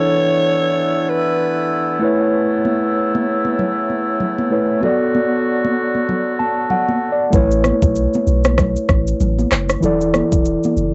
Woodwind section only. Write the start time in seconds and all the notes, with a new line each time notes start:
Already playing: D3 E3 A3 B3 E4
2.02 C#3
4.82 D3 F#3 F#4